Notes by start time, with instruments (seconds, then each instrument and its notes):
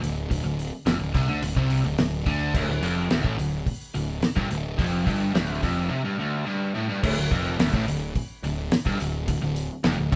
0.01 picked electric bass D1, overdriven electric guitar D2, open hi-hat
0.30 picked electric bass D1, overdriven electric guitar D2, kick, open hi-hat
0.44 picked electric bass D1, overdriven electric guitar D2
0.59 open hi-hat
0.86 picked electric bass F1, overdriven electric guitar F2, snare, open hi-hat
0.99 picked electric bass D1, overdriven electric guitar D2
1.14 picked electric bass C2, overdriven electric guitar C3, kick, open hi-hat
1.28 picked electric bass D2, overdriven electric guitar D3
1.42 picked electric bass D1, overdriven electric guitar D2, open hi-hat
1.56 picked electric bass C2, overdriven electric guitar C3, kick
1.70 open hi-hat
1.85 picked electric bass D1, overdriven electric guitar D2
1.98 picked electric bass D1, overdriven electric guitar D2, snare, open hi-hat
2.26 picked electric bass D2, overdriven electric guitar D3, kick, open hi-hat
2.54 picked electric bass D1, overdriven electric guitar D2, kick, crash
2.69 picked electric bass D1, overdriven electric guitar D2
2.83 picked electric bass F1, overdriven electric guitar F2, open hi-hat
3.10 picked electric bass D1, overdriven electric guitar D2, snare, open hi-hat
3.24 picked electric bass A1, overdriven electric guitar A2, kick
3.38 picked electric bass D1, overdriven electric guitar D2, open hi-hat
3.67 kick, open hi-hat
3.94 picked electric bass D1, overdriven electric guitar D2, open hi-hat
4.22 snare, open hi-hat
4.36 picked electric bass G1, overdriven electric guitar G2, kick
4.51 picked electric bass D1, overdriven electric guitar D2, open hi-hat
4.78 picked electric bass F1, overdriven electric guitar F2, kick, open hi-hat
5.06 picked electric bass G1, overdriven electric guitar G2, kick, open hi-hat
5.34 picked electric bass D1, overdriven electric guitar D2, snare, open hi-hat
5.62 picked electric bass F1, overdriven electric guitar F2, kick, open hi-hat
5.90 overdriven electric guitar C3
6.04 overdriven electric guitar G2
6.19 overdriven electric guitar D2
6.46 overdriven electric guitar G2
6.75 overdriven electric guitar A2
6.89 overdriven electric guitar G2
7.03 picked electric bass D1, overdriven electric guitar D2, kick, crash
7.17 picked electric bass D1, overdriven electric guitar D2
7.31 picked electric bass F1, overdriven electric guitar F2, kick, open hi-hat
7.59 picked electric bass D1, overdriven electric guitar D2, snare, open hi-hat
7.73 picked electric bass A1, overdriven electric guitar A2, kick
7.87 picked electric bass D1, overdriven electric guitar D2, open hi-hat
8.16 kick, open hi-hat
8.43 picked electric bass D1, overdriven electric guitar D2, open hi-hat
8.72 snare, open hi-hat
8.86 picked electric bass G1, overdriven electric guitar G2, kick
9.00 picked electric bass D1, overdriven electric guitar D2, open hi-hat
9.28 picked electric bass D1, overdriven electric guitar D2, kick, open hi-hat
9.42 picked electric bass D1, overdriven electric guitar D2
9.56 open hi-hat
9.84 picked electric bass F1, overdriven electric guitar F2, snare, open hi-hat
9.98 picked electric bass D1, overdriven electric guitar D2
10.12 picked electric bass C2, overdriven electric guitar C3, kick, open hi-hat